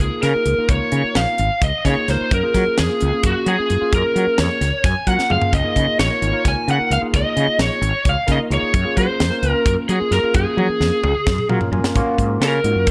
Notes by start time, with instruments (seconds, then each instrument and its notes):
Already playing: tine electric piano A#3 D#4 F4 G#4
0.00 lead electric guitar G#4
0.23 fretless electric bass C#3, lead electric guitar A#4, snare, closed hi-hat
0.35 tine electric piano A#3 D#4 F4 G#4, muted fretless electric bass stroke
0.45 fretless electric bass C#2, closed hi-hat
0.58 tine electric piano A#3 D#4 F4 A#4
0.69 fretless electric bass C#2, lead electric guitar C#5, kick, closed hi-hat
0.92 fretless electric bass C#3, closed hi-hat
1.04 muted fretless electric bass stroke
1.15 fretless electric bass A#1, lead electric guitar F5, snare, closed hi-hat
1.38 fretless electric bass G#1, closed hi-hat
1.50 muted fretless electric bass stroke
1.61 fretless electric bass C#2, lead electric guitar D#5, kick, closed hi-hat
1.85 fretless electric bass C#3, tine electric piano A#3 D#4 F4 G#4, lead electric guitar C#5, kick, snare, closed hi-hat
1.97 muted fretless electric bass stroke
2.08 fretless electric bass C#2, tine electric piano A#3 D#4 F4 A#4, lead electric guitar C5, snare, closed hi-hat
2.21 muted fretless electric bass stroke
2.31 fretless electric bass F#2, lead electric guitar A#4, kick, closed hi-hat
2.43 tine electric piano A#3 C#4 F4 G#4
2.54 fretless electric bass F#3, kick, snare, closed hi-hat
2.67 muted fretless electric bass stroke
2.78 fretless electric bass F2, lead electric guitar G#4, snare, closed hi-hat
2.89 tine electric piano A#3 C#4 F4 G#4
3.01 fretless electric bass C#2, closed hi-hat
3.13 tine electric piano A#3 C#4 F4 G#4, muted fretless electric bass stroke
3.23 fretless electric bass F#2, lead electric guitar F#4, kick, closed hi-hat
3.46 fretless electric bass F#3, lead electric guitar G#4, closed hi-hat
3.58 tine electric piano A#3 C#4 F4 G#4, muted fretless electric bass stroke
3.70 fretless electric bass F#2, closed hi-hat
3.81 tine electric piano A#3 C#4 F4 G#4, muted fretless electric bass stroke
3.93 fretless electric bass F#2, lead electric guitar A#4, kick, closed hi-hat
4.16 fretless electric bass F#3, closed hi-hat
4.27 muted fretless electric bass stroke
4.38 fretless electric bass F2, lead electric guitar C#5, snare, closed hi-hat
4.61 fretless electric bass C#2, snare, closed hi-hat
4.84 fretless electric bass F#2, lead electric guitar G#5, kick, snare, closed hi-hat
5.07 fretless electric bass F#3, tine electric piano A#3 C#4 F4 A#4, lead electric guitar F#5, kick, closed hi-hat
5.18 muted fretless electric bass stroke, snare
5.29 fretless electric bass F#2, tine electric piano A#3 C#4 F4 G#4, lead electric guitar F5, mid tom
5.42 muted fretless electric bass stroke, floor tom
5.52 fretless electric bass C#2, lead electric guitar D#5, kick, closed hi-hat
5.64 tine electric piano A#3 D#4 F4 G#4
5.76 fretless electric bass C#3, kick, closed hi-hat
5.87 muted fretless electric bass stroke
5.99 fretless electric bass A#1, lead electric guitar C#5, snare, closed hi-hat
6.10 tine electric piano A#3 D#4 F4 A#4
6.22 fretless electric bass G#1, closed hi-hat
6.33 tine electric piano A#3 D#4 F4 A#4, muted fretless electric bass stroke
6.45 fretless electric bass C#2, lead electric guitar G#5, kick, snare, closed hi-hat
6.68 fretless electric bass C#3, lead electric guitar F#5, closed hi-hat
6.78 tine electric piano A#3 D#4 F4 A#4, muted fretless electric bass stroke
6.90 fretless electric bass C#2, lead electric guitar F5, closed hi-hat
7.01 tine electric piano A#3 D#4 F4 G#4, muted fretless electric bass stroke
7.13 fretless electric bass C#2, lead electric guitar D#5, kick, closed hi-hat
7.37 fretless electric bass C#3, closed hi-hat
7.48 muted fretless electric bass stroke
7.59 fretless electric bass A#1, lead electric guitar C#5, snare, closed hi-hat
7.81 fretless electric bass G#1, closed hi-hat
7.94 muted fretless electric bass stroke
8.05 fretless electric bass C#2, lead electric guitar F5, kick, closed hi-hat
8.27 fretless electric bass C#3, tine electric piano A#3 D#4 F4 A#4, kick, snare, closed hi-hat
8.32 lead electric guitar D#5
8.38 muted fretless electric bass stroke
8.50 fretless electric bass C#2, tine electric piano A#3 D#4 F4 G#4, lead electric guitar C#5, closed hi-hat
8.62 muted fretless electric bass stroke
8.74 fretless electric bass F#2, kick, closed hi-hat
8.85 tine electric piano A#3 C#4 F4 G#4
8.97 fretless electric bass F#3, lead electric guitar C5, kick, closed hi-hat
9.08 muted fretless electric bass stroke
9.20 fretless electric bass F2, snare, closed hi-hat
9.30 tine electric piano A#3 C#4 F4 A#4
9.43 fretless electric bass C#2, closed hi-hat
9.51 tine electric piano A#3 C#4 F4 A#4, lead electric guitar A#4, muted fretless electric bass stroke
9.66 fretless electric bass F#2, lead electric guitar A#4, kick, closed hi-hat
9.89 fretless electric bass F#3, lead electric guitar G#4, closed hi-hat
10.00 tine electric piano A#3 C#4 F4 G#4, muted fretless electric bass stroke
10.11 fretless electric bass F#2, lead electric guitar A#4, snare, closed hi-hat
10.23 tine electric piano A#3 C#4 F4 G#4, muted fretless electric bass stroke
10.34 fretless electric bass F#2, lead electric guitar G#4, kick, closed hi-hat
10.57 fretless electric bass F#3, high tom
10.69 muted fretless electric bass stroke
10.80 fretless electric bass F2, snare
11.03 fretless electric bass C#2, mid tom
11.27 fretless electric bass F#2, kick, snare
11.38 mid tom
11.49 fretless electric bass F#3, tine electric piano A#3 C#4 F4 A#4 C#5, mid tom
11.61 muted fretless electric bass stroke, floor tom
11.72 fretless electric bass F#2, tine electric piano A#3 C#4 F4 A#4 G#5, floor tom
11.84 muted fretless electric bass stroke, snare
11.95 fretless electric bass G#2, tine electric piano A#3 C#4 F4 F#4, kick, closed hi-hat
12.05 muted fretless electric bass stroke
12.18 fretless electric bass G#2, kick, closed hi-hat
12.40 fretless electric bass C#3, lead electric guitar A#4, snare, closed hi-hat
12.64 fretless electric bass G#2, tine electric piano A#3 C#4 F4 F#4, closed hi-hat
12.75 fretless electric bass F#2
12.87 kick, closed hi-hat